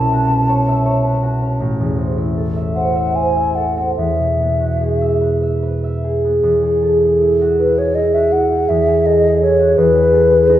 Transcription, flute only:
0.00 1.60 A5 medium
2.76 3.17 F#5 medium
3.16 3.57 G#5 medium
3.55 3.96 F#5 soft
3.97 5.18 E5 soft
7.59 7.80 B4 medium
7.78 7.96 C#5 medium
7.95 8.16 D#5 medium
8.14 8.34 E5 medium
8.32 8.70 F#5 medium
8.69 9.08 E5 medium
9.06 9.41 D#5 medium
9.42 9.79 C#5 medium
9.77 10.60 B4 medium

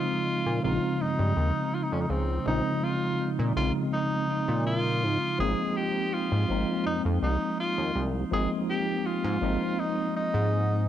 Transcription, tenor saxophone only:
0.00 0.64 F4 loud
0.64 1.03 F4 loud
1.01 1.75 D#4 loud
1.74 1.84 F4 medium
1.83 1.94 D#4 medium
1.92 2.02 C#4 medium
2.01 2.12 D#4 medium
2.10 2.47 C4 medium
2.48 2.85 D#4 loud
2.83 3.30 F4 loud
3.56 3.72 F4 loud
3.93 4.62 D#4 loud
4.66 5.36 F4 loud
5.40 5.78 G#4 loud
5.77 6.15 G4 loud
6.13 6.86 F4 loud
6.86 7.02 D#4 loud
7.23 7.57 D#4 loud
7.60 8.03 F4 loud
8.33 8.49 G#4 loud
8.70 9.07 G4 loud
9.06 9.81 F4 loud
9.79 10.16 D#4 loud
10.16 10.85 D#4 loud

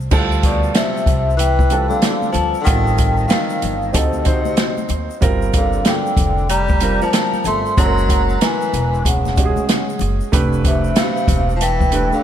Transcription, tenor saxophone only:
0.44 0.73 B2 medium
0.75 1.35 C3 medium
1.37 1.86 E3 medium
1.88 2.30 D3 medium
2.32 2.59 F3 medium
2.61 2.63 D3 medium
2.61 3.25 D#3 medium
3.28 3.89 D#3 medium
3.93 4.85 C3 medium
5.56 5.85 D3 medium
5.88 6.47 D3 medium
6.50 6.98 G3 medium
7.02 7.43 F3 medium
7.46 7.76 A3 medium
7.77 8.37 F#3 medium
8.42 9.01 E3 medium
9.05 9.97 C#3 medium
10.66 10.95 C3 medium
10.98 11.52 C3 medium
11.56 11.60 F3 medium
11.62 12.10 E3 medium
12.13 12.23 D3 medium

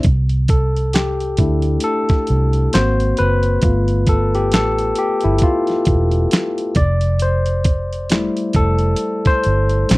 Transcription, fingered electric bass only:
0.06 1.35 C2 loud
1.40 1.77 D2 medium
2.30 2.67 C2 medium
2.75 3.12 G#1 medium
3.20 3.57 F#1 medium
3.64 4.54 G1 loud
4.54 4.91 A1 medium
5.25 5.40 G1 medium
5.88 6.25 E1 medium
6.77 8.27 F1 medium
8.56 8.93 F1 medium
9.46 9.83 G1 medium
9.91 9.98 A#1 loud

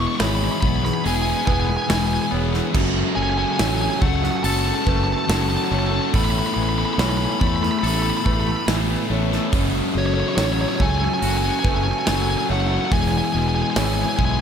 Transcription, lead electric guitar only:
0.00 0.07 C#6 loud
0.07 0.15 C#6 medium
0.15 0.19 C#6 loud
0.20 0.28 B5 loud
0.28 0.35 B5 medium
0.35 0.43 B5 loud
0.44 0.51 B5 medium
0.51 0.60 B5 loud
0.61 0.67 B5 medium
0.68 0.76 B5 loud
0.76 0.84 B5 medium
0.85 0.93 B5 medium
0.94 1.02 B5 medium
1.07 1.14 G#5 medium
1.15 1.21 G#5 medium
1.22 1.29 G#5 medium
1.30 1.36 G#5 medium
1.37 1.44 G#5 medium
1.46 1.52 G#5 medium
1.53 1.60 G#5 medium
1.60 1.67 G#5 medium
1.67 1.75 G#5 medium
1.77 1.82 G#5 medium
1.82 1.90 G#5 medium
1.91 1.98 G#5 medium
1.98 2.06 G#5 medium
2.06 2.13 G#5 medium
2.13 2.21 G#5 medium
2.22 2.30 G#5 medium
3.15 3.23 G#5 medium
3.23 3.29 G#5 medium
3.30 3.37 G#5 medium
3.38 3.44 G#5 medium
3.45 3.52 G#5 medium
3.53 3.60 G#5 medium
3.60 3.67 G#5 medium
3.68 3.74 G#5 medium
3.75 3.81 G#5 medium
3.81 3.89 G#5 medium
3.90 3.98 G#5 medium
4.01 4.07 F#5 loud
4.07 4.15 F#5 medium
4.16 4.23 F#5 medium
4.24 4.30 F#5 medium
4.31 4.37 F#5 medium
4.37 4.43 F#5 medium
4.44 4.50 A5 loud
4.50 4.58 A5 medium
4.59 4.65 A5 medium
4.66 4.73 A5 medium
4.74 4.82 A5 loud
4.82 4.88 A5 medium
4.89 4.96 A5 loud
4.96 5.03 A5 medium
5.04 5.11 A5 loud
5.12 5.18 A5 medium
5.18 5.24 A5 loud
5.25 5.32 A5 medium
5.34 5.41 A5 loud
5.41 5.49 A5 medium
5.49 5.56 A5 medium
5.57 5.64 A5 medium
5.64 5.71 A5 medium
5.71 5.78 A5 medium
5.79 5.86 A5 medium
5.87 5.94 A5 medium
5.94 6.01 A5 medium
6.02 6.09 A5 medium
6.16 6.23 B5 loud
6.25 6.30 B5 medium
6.30 6.38 B5 medium
6.38 6.46 B5 medium
6.46 6.54 B5 loud
6.54 6.62 B5 medium
6.63 6.69 B5 medium
6.69 6.77 B5 medium
6.78 6.85 B5 medium
6.85 6.93 B5 medium
6.93 7.00 B5 loud
7.00 7.08 B5 medium
7.09 7.17 B5 loud
7.17 7.24 B5 medium
7.25 7.31 B5 loud
7.32 7.40 B5 medium
7.40 7.47 B5 loud
7.47 7.55 B5 medium
7.56 7.62 B5 loud
7.63 7.71 B5 medium
7.71 7.79 B5 loud
7.79 7.87 B5 medium
7.87 7.94 B5 loud
7.94 8.02 B5 medium
8.02 8.10 B5 loud
8.10 8.17 B5 medium
8.17 8.25 B5 medium
8.26 8.33 B5 medium
8.34 8.40 B5 medium
8.41 8.48 B5 medium
8.49 8.56 B5 medium
8.57 8.64 B5 medium
9.98 10.06 C#5 medium
10.06 10.14 C#5 medium
10.14 10.20 C#5 medium
10.20 10.28 C#5 medium
10.29 10.35 C#5 medium
10.36 10.44 C#5 medium
10.45 10.52 C#5 medium
10.52 10.60 C#5 medium
10.61 10.68 C#5 medium
10.69 10.76 C#5 medium
10.76 10.84 C#5 medium
10.82 10.89 G#5 loud
10.90 10.97 G#5 medium
10.98 11.04 G#5 loud
11.05 11.12 G#5 medium
11.14 11.19 G#5 loud
11.20 11.28 G#5 medium
11.29 11.36 G#5 loud
11.37 11.43 G#5 loud
11.43 11.51 G#5 loud
11.51 11.59 G#5 loud
11.59 11.67 G#5 loud
11.68 11.75 G#5 loud
11.75 11.83 G#5 loud
11.84 11.91 G#5 loud
11.91 11.98 G#5 loud
11.99 12.06 G#5 loud
12.06 12.14 G#5 loud
12.15 12.22 G#5 loud
12.22 12.30 G#5 loud
12.30 12.38 G#5 loud
12.38 12.46 G#5 loud
12.52 12.60 F#5 loud
12.60 12.67 F#5 medium
12.67 12.76 F#5 loud
12.77 12.85 F#5 medium
12.85 12.93 F#5 medium
12.93 13.01 G#5 loud
13.02 13.08 G#5 medium
13.08 13.16 G#5 medium
13.18 13.24 G#5 medium
13.25 13.32 G#5 medium
13.32 13.38 G#5 medium
13.39 13.47 G#5 medium
13.48 13.54 G#5 medium
13.55 13.62 G#5 medium
13.62 13.70 G#5 medium
13.70 13.77 G#5 medium
13.78 13.85 G#5 medium
13.86 13.93 G#5 loud
13.94 14.01 G#5 medium
14.02 14.08 G#5 loud
14.09 14.16 G#5 medium
14.17 14.24 G#5 loud
14.25 14.31 G#5 medium
14.32 14.39 G#5 loud

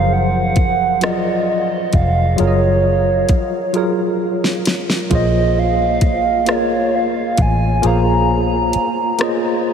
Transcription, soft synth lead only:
0.00 0.14 F5 loud
0.13 1.05 F#5 loud
1.03 1.48 D#5 medium
1.49 1.96 D#5 medium
1.95 2.41 F5 medium
2.40 4.21 C#5 medium
5.14 5.60 D#5 medium
5.59 6.52 F5 loud
6.50 6.97 C#5 medium
6.95 7.43 F5 medium
7.41 7.88 G#5 loud
7.86 9.67 A#5 loud

